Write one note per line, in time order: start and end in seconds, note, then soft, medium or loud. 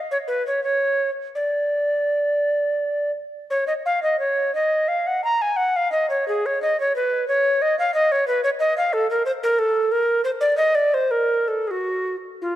0.11 0.17 C#5 medium
0.28 0.45 B4 medium
0.47 0.63 C#5 medium
0.64 1.10 C#5 medium
1.35 3.11 D5 medium
3.50 3.67 C#5 medium
3.67 3.73 D#5 medium
3.86 4.02 F5 medium
4.03 4.19 D#5 medium
4.19 4.54 C#5 medium
4.55 4.90 D#5 medium
4.88 5.08 F5 medium
5.07 5.24 F#5 medium
5.24 5.43 A#5 medium
5.42 5.58 G#5 medium
5.57 5.78 F#5 medium
5.76 5.91 F5 medium
5.92 6.09 D#5 medium
6.10 6.28 C#5 medium
6.28 6.47 G#4 medium
6.46 6.62 C#5 medium
6.62 6.80 D#5 medium
6.80 6.95 C#5 medium
6.96 7.28 B4 medium
7.28 7.63 C#5 medium
7.62 7.78 D#5 medium
7.79 7.94 F5 medium
7.94 8.13 D#5 loud
8.12 8.27 C#5 medium
8.28 8.43 B4 medium
8.44 8.50 C#5 medium
8.60 8.77 D#5 medium
8.78 8.95 F5 medium
8.93 9.10 A4 loud
9.11 9.25 A#4 medium
9.26 9.32 C5 loud
9.43 9.60 A#4 medium
9.59 9.93 A4 medium
9.92 10.24 A#4 medium
10.24 10.30 C5 loud
10.41 10.57 D5 medium
10.57 10.76 D#5 medium
10.75 10.96 D5 medium
10.94 11.13 C5 medium
11.11 11.50 A#4 medium
11.48 11.69 A4 medium
11.67 12.16 F#4 medium
11.67 11.72 G#4 medium
12.42 12.56 F4 medium